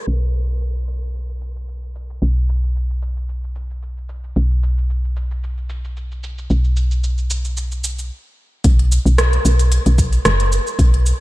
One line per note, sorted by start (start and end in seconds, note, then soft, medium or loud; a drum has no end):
0.07 2.19 B1 medium
0.35 cabasa medium
0.49 cabasa soft
0.61 cabasa soft
0.76 cabasa soft
0.88 cabasa medium
1.02 cabasa soft
1.15 cabasa soft
1.29 cabasa soft
1.41 cabasa medium
1.56 cabasa soft
1.68 cabasa soft
1.83 cabasa soft
1.95 cabasa medium
2.10 cabasa soft
2.22 4.34 B1 medium
2.22 cabasa soft
2.37 cabasa soft
2.49 cabasa medium
2.64 cabasa soft
2.76 cabasa soft
2.90 cabasa soft
3.02 cabasa medium
3.17 cabasa soft
3.29 cabasa soft
3.44 cabasa soft
3.55 cabasa medium
3.70 cabasa soft
3.82 cabasa soft
3.97 cabasa soft
4.09 cabasa medium
4.24 cabasa soft
4.36 6.48 B1 medium
4.36 cabasa soft
4.51 cabasa soft
4.63 cabasa medium
4.78 cabasa soft
4.90 cabasa soft
5.04 cabasa soft
5.16 cabasa medium
5.31 cabasa soft
5.43 cabasa soft
5.58 cabasa soft
5.69 cabasa medium
5.84 cabasa soft
5.97 cabasa soft
6.12 cabasa soft
6.23 cabasa medium
6.38 cabasa soft
6.50 8.11 B1 medium
6.50 cabasa soft
6.64 cabasa soft
6.76 cabasa medium
6.91 cabasa soft
7.04 cabasa soft
7.18 cabasa soft
7.30 cabasa medium
7.45 cabasa soft
7.57 cabasa soft
7.72 cabasa soft
7.84 cabasa medium
7.99 cabasa soft
8.64 8.99 B1 loud
8.64 kick loud
8.64 closed hi-hat medium
8.64 cabasa soft
8.79 closed hi-hat soft
8.92 cabasa medium
9.06 9.39 B1 medium
9.06 cabasa soft
9.18 cross-stick loud
9.18 closed hi-hat medium
9.18 cabasa soft
9.33 closed hi-hat soft
9.45 9.79 B1 medium
9.45 cabasa medium
9.59 closed hi-hat soft
9.59 cabasa soft
9.72 closed hi-hat medium
9.72 cabasa soft
9.86 10.19 B1 medium
9.86 closed hi-hat soft
9.86 cabasa soft
9.98 kick loud
9.98 cabasa medium
10.13 closed hi-hat soft
10.13 cabasa soft
10.25 10.59 F#1 medium
10.25 cross-stick loud
10.25 closed hi-hat medium
10.25 cabasa soft
10.40 closed hi-hat soft
10.52 cabasa medium
10.67 cabasa soft
10.79 11.13 B1 loud
10.79 kick loud
10.79 closed hi-hat medium
10.79 cabasa soft
10.94 closed hi-hat soft
11.06 cabasa medium